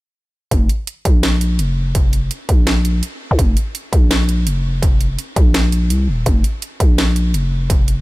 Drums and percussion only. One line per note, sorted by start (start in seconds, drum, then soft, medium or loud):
0.51 kick loud
0.51 closed hi-hat medium
0.69 closed hi-hat medium
0.87 closed hi-hat medium
1.05 kick loud
1.05 closed hi-hat medium
1.23 snare loud
1.23 closed hi-hat medium
1.41 closed hi-hat medium
1.59 closed hi-hat medium
1.95 kick loud
1.95 closed hi-hat medium
2.13 closed hi-hat medium
2.31 closed hi-hat medium
2.49 kick loud
2.49 closed hi-hat medium
2.67 snare loud
2.67 closed hi-hat medium
2.85 closed hi-hat medium
3.03 closed hi-hat medium
3.39 kick loud
3.39 closed hi-hat medium
3.57 closed hi-hat medium
3.75 closed hi-hat medium
3.93 kick loud
3.93 closed hi-hat medium
4.11 snare loud
4.11 closed hi-hat medium
4.29 closed hi-hat medium
4.47 closed hi-hat medium
4.82 kick loud
4.82 closed hi-hat medium
5.01 closed hi-hat medium
5.19 closed hi-hat medium
5.36 kick loud
5.36 closed hi-hat medium
5.54 snare loud
5.54 closed hi-hat medium
5.72 closed hi-hat medium
5.90 closed hi-hat medium
6.26 kick loud
6.26 closed hi-hat medium
6.44 closed hi-hat medium
6.62 closed hi-hat medium
6.80 kick medium
6.80 closed hi-hat medium
6.98 snare loud
6.98 closed hi-hat medium
7.16 closed hi-hat medium
7.34 closed hi-hat medium
7.70 kick loud
7.70 closed hi-hat medium
7.88 closed hi-hat medium